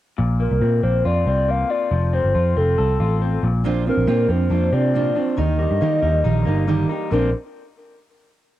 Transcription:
0.18 picked electric bass A#1, clean electric guitar A#2
0.40 clean electric guitar A#3, soft synth lead A#4
0.51 picked electric bass C2
0.61 picked electric bass A#2, clean electric guitar C4
0.83 picked electric bass A#1, clean electric guitar A#3, soft synth lead C5
1.05 picked electric bass F2, clean electric guitar F4, soft synth lead D5
1.26 picked electric bass C2, clean electric guitar C4, soft synth lead D5
1.48 clean electric guitar A#3, soft synth lead F5
1.70 clean electric guitar F4, soft synth lead D5
1.91 picked electric bass F1, clean electric guitar F3
2.13 clean electric guitar C4, soft synth lead C5
2.24 picked electric bass G1
2.35 picked electric bass F2, clean electric guitar F4
2.56 picked electric bass F1, clean electric guitar C4, soft synth lead A4
2.78 picked electric bass C2, clean electric guitar A4
3.00 picked electric bass A1, clean electric guitar F4
3.22 clean electric guitar C4
3.43 picked electric bass A#1, clean electric guitar A#2
3.64 steel-string acoustic guitar A#2 A#3 C4 D4 F4, clean electric guitar A#2
3.86 clean electric guitar F3, steel-string acoustic guitar C4 D4 F4, soft synth lead A#4
3.98 picked electric bass A#1
4.07 steel-string acoustic guitar A#2 A#3 C4 D4 F4, picked electric bass A#2, clean electric guitar C4
4.29 picked electric bass F2, clean electric guitar F3, steel-string acoustic guitar C4 D4 F4, soft synth lead C5
4.50 picked electric bass F2, steel-string acoustic guitar A#3 C4 D4 F4, clean electric guitar D4
4.72 picked electric bass C3, clean electric guitar C4, steel-string acoustic guitar C4 D4 F4, soft synth lead D5
4.94 steel-string acoustic guitar A#2 A#3 C4 D4 F4, clean electric guitar F3
5.15 steel-string acoustic guitar C4 D4 F4, clean electric guitar D4
5.37 picked electric bass D#2, steel-string acoustic guitar D#3 D#4 G4 A#4, clean electric guitar D#3, soft synth lead D#5
5.59 clean electric guitar G3, steel-string acoustic guitar D#4 G4 A#4
5.71 picked electric bass G2
5.81 steel-string acoustic guitar D#3 D#4 G4 A#4, picked electric bass D#3, clean electric guitar A#3
6.02 picked electric bass D#2, clean electric guitar G3, steel-string acoustic guitar D#4 G4 A#4
6.24 picked electric bass A#1, steel-string acoustic guitar D#3 D#4 G4 A#4, clean electric guitar D#4
6.45 picked electric bass G1, clean electric guitar A#3, steel-string acoustic guitar D#4 G4 A#4
6.67 steel-string acoustic guitar D#3 D#4 G4 A#4, clean electric guitar G3
6.89 clean electric guitar D#4, steel-string acoustic guitar D#4 G4 A#4
7.11 picked electric bass A#1, clean electric guitar A#2 D3 F3 C4 D4, steel-string acoustic guitar A#2 A#3 C4 D4 F4, soft synth lead A#4

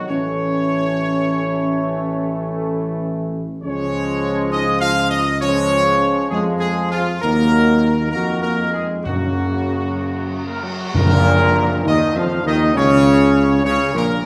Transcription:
0.08 tuba A1, trombone section E3 A3, french horn section C#4, trumpet section C#5
3.63 tuba C#2, trombone section F3 G#3, french horn section C#4, trumpet section C#5
4.51 french horn section D#4, trumpet section D#5
4.80 french horn section F4, trumpet section F5
5.10 french horn section D#4, trumpet section D#5
5.41 trombone section F3 G#3, french horn section C#4, trumpet section C#5
6.30 tuba F2, trombone section F3 G#3, french horn section G#3, trumpet section G#4
6.59 french horn section G#3, trumpet section G#4
6.91 french horn section F3, trumpet section F4
7.22 tuba D#2, trombone section D#3 F#3, french horn section A#3, trumpet section A#4
8.11 tuba F2, trombone section D#3 F#4, french horn section A#3, trumpet section A#4
8.42 french horn section A#3, trumpet section A#4
8.60 trombone section G#3
8.73 french horn section G#3, trumpet section G#4
9.04 timpani F#2, tuba F#2, trombone section C#3, french horn section F#3, trumpet section F#4
9.08 trombone section A#3
10.46 french horn section A#3, trumpet section A#4
10.62 french horn section F#3, trumpet section F#4
10.93 tuba A#1, timpani F#2, trombone section A#2, french horn section A#3, trumpet section A#4, tam-tam
11.84 tuba D#2, trombone section D#3, french horn section D#4, trumpet section D#5
12.15 tuba F2, trombone section F3, french horn section F4, trumpet section F5
12.43 tuba D#2, trombone section D#3, french horn section D#4, trumpet section D#5
12.74 tuba C#2, trombone section C#3, french horn section C#4, trumpet section C#5
13.63 tuba C#2, trombone section C#3, french horn section C#4, trumpet section C#5
13.93 tuba A#1, trombone section A#2, french horn section A#3, trumpet section A#4

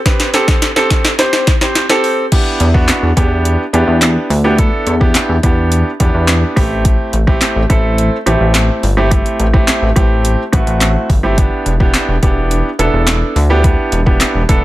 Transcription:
0.05 grand piano C4 G4 B4, kick, snare, closed hi-hat
0.20 snare, closed hi-hat
0.34 grand piano C4 G4 A4, snare, closed hi-hat
0.48 kick, snare
0.62 snare, closed hi-hat
0.76 grand piano C4 G4 A4, snare
0.90 kick, snare, closed hi-hat
1.05 snare
1.19 grand piano C4 G4 C5, snare, closed hi-hat
1.33 snare
1.47 kick, snare, closed hi-hat
1.61 grand piano C4 G4 C5, snare, closed hi-hat
1.75 snare, closed hi-hat
1.89 grand piano C4 G4 A4, snare
2.04 open hi-hat
2.32 grand piano B3 D4 E4 G4, kick, closed hi-hat, crash
2.60 analog synth bass E2, closed hi-hat
2.74 grand piano B3 D4 E4 F#4, kick
2.88 snare, clap, closed hi-hat
3.03 analog synth bass E2
3.17 analog synth bass E2, grand piano B3 D4 E4 G4, kick, closed hi-hat
3.45 closed hi-hat
3.73 analog synth bass E2, grand piano B3 D4 E4 G4, closed hi-hat
3.88 analog synth bass E2
4.02 snare, clap, closed hi-hat
4.30 analog synth bass D2, open hi-hat
4.44 grand piano B3 D4 E4 G4
4.58 grand piano B3 D4 E4 A4, kick, closed hi-hat
4.87 analog synth bass E2, closed hi-hat
5.00 grand piano B3 D4 E4 G4, kick
5.15 snare, clap, closed hi-hat
5.29 analog synth bass E2
5.43 analog synth bass E2, grand piano B3 D4 E4 G4, kick, closed hi-hat
5.72 closed hi-hat
6.00 analog synth bass E2, grand piano B3 D4 E4 G4, kick, closed hi-hat
6.14 analog synth bass E2
6.28 snare, clap, closed hi-hat
6.56 analog synth bass A1, grand piano A3 C4 E4 G4, kick, open hi-hat
6.85 kick, closed hi-hat
7.13 analog synth bass A1, closed hi-hat
7.27 grand piano A3 C4 E4 G4, kick
7.41 snare, clap, closed hi-hat
7.56 analog synth bass A1
7.70 analog synth bass A1, grand piano A3 C4 E4 A4, kick, closed hi-hat
7.98 closed hi-hat
8.26 analog synth bass A1, grand piano A3 C4 E4 G4, closed hi-hat
8.41 analog synth bass A1
8.54 snare, clap, closed hi-hat
8.83 analog synth bass G1, open hi-hat
8.97 grand piano A3 C4 E4 G4
9.11 grand piano A3 C4 E4 G4, kick, closed hi-hat
9.26 closed hi-hat
9.40 analog synth bass A1, closed hi-hat
9.54 grand piano A3 C4 E4 G4, kick
9.68 snare, clap, closed hi-hat
9.82 analog synth bass A1
9.96 analog synth bass A1, grand piano A3 C4 E4 G4, kick, closed hi-hat
10.25 closed hi-hat
10.53 analog synth bass A1, grand piano A3 C4 E4 F#4, kick, closed hi-hat
10.67 analog synth bass A1, closed hi-hat
10.81 snare, clap, closed hi-hat
11.10 analog synth bass G1, kick, open hi-hat
11.23 grand piano A3 C4 E4 G4
11.37 grand piano B3 D4 E4 G4, kick, closed hi-hat
11.66 analog synth bass E1, closed hi-hat
11.80 grand piano B3 D4 E4 G4, kick
11.94 snare, clap, closed hi-hat
12.08 analog synth bass E1
12.22 analog synth bass E1, grand piano B3 D4 E4 G4, kick, closed hi-hat
12.51 closed hi-hat
12.79 analog synth bass E1, grand piano B3 D4 E4 A4, closed hi-hat
12.93 analog synth bass E1
13.07 snare, clap, closed hi-hat
13.36 analog synth bass D2, open hi-hat
13.50 grand piano B3 D4 E4 G4
13.64 grand piano B3 D4 E4 G4, kick, closed hi-hat
13.92 analog synth bass E1, closed hi-hat
14.06 grand piano B3 D4 E4 G4, kick
14.20 snare, clap, closed hi-hat
14.35 analog synth bass E1
14.49 analog synth bass E1, grand piano B3 D4 E4 A4, kick, closed hi-hat

